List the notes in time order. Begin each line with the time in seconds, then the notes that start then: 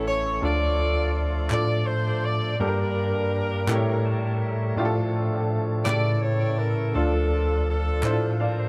Already playing: A1 A2 E3 A3 C#4 E4 A4
0.08 C#5
0.41 D2 D3 F3 A3 D4 F4 A4
0.45 F4 A4 D5
1.50 A2 D4 F4 A4 D5, clap
1.87 C5
2.25 D5
2.60 G2 G3 A#3 D4 G4 A4 A#4
2.67 A#4
3.67 A2 G3 A3 C4 E4 G4 A#4 C#5, clap
3.74 A3 C#5
4.05 A5
4.42 E5
4.76 A2 E3 A3 D4 F4 G4 A4
4.85 F3 A4
5.84 A2 C#3 E3 E4 G4 A4 D5, clap
5.93 A4
6.22 C#5
6.58 A#4
6.94 D2 D3 F3 D4 F4 A4
7.69 D4 F4 A4
8.03 A2 D4 E4 C5, clap
8.11 F4
8.40 A#4 D5 F5 A5
8.60 C5 F5